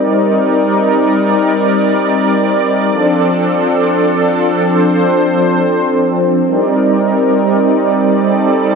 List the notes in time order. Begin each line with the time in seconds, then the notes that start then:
Already playing: G3 C4 D#4 A#4 D5
2.90 F3 C4 D4 A4
4.68 C5
6.45 G3 D#4 A#4 D5
8.23 A4